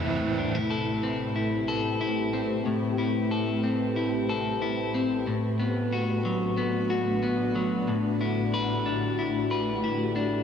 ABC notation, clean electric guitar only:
X:1
M:4/4
L:1/16
Q:1/4=92
K:Ador
V:1 name="Clean electric guitar"
A,,2 D E A2 C2 E2 A2 E2 C2 | A,,2 E2 A2 C2 E2 A2 E2 C2 | A,,2 B,2 F2 F,2 B,2 F2 B,2 F,2 | A,,2 E2 B2 D2 E2 B2 E2 D2 |]